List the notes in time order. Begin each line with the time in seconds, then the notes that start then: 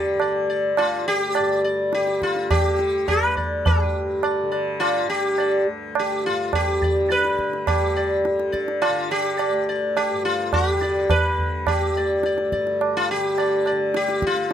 Already playing: D2 G2 D3 G4 D5
0.15 D3
0.20 D5, tabla na
0.50 D5
0.77 D2 F4, tabla na
1.08 G4
1.35 G2 D5, tabla na
1.64 D5
1.93 G4, tabla te
1.98 D3
2.07 tabla te
2.22 F4, tabla ke
2.36 tabla te
2.50 G4, tabla na, tabla ge
2.60 D3
2.79 tabla te
3.08 B4, tabla na, tabla ge
3.21 D2
3.37 D5, tabla ge
3.66 G4, tabla na, tabla ge
3.82 G2
4.23 D5, tabla na
4.43 D3
4.52 D5, tabla na
4.80 F4, tabla na
5.05 D3
5.09 G4, tabla na
5.38 D5, tabla na
5.64 D2
5.95 tabla na
5.99 G4
6.26 G2 F4
6.53 G4, tabla na, tabla ge
6.82 D5, tabla ge
6.87 D3
7.10 B4 D5, tabla te
7.24 tabla te
7.39 tabla ke
7.49 D3
7.53 tabla te
7.67 G2 G4, tabla na, tabla ge
7.97 D5
8.25 D3, tabla te
8.40 tabla te
8.52 D5, tabla ke
8.68 tabla te
8.82 F4, tabla na
8.89 D3
9.11 G4, tabla na
9.39 D5, tabla na
9.49 D2
9.69 D5
9.97 G4, tabla na
10.13 G2
10.25 F4
10.53 G4, tabla na, tabla ge
10.74 D3
10.82 D5, tabla te
11.10 B4, tabla na, tabla ge
11.33 D3
11.39 tabla ge
11.67 G4, tabla na, tabla ge
11.94 D2 D5
12.23 D5, tabla te
12.38 tabla te
12.52 G2 D5, tabla ke
12.67 tabla te
12.81 tabla na
12.97 F4
13.11 D3 G4
13.38 D5, tabla na
13.66 D5, tabla na
13.72 D3
13.94 G4, tabla te
14.09 tabla te
14.22 tabla ke
14.27 F4
14.33 D2, tabla te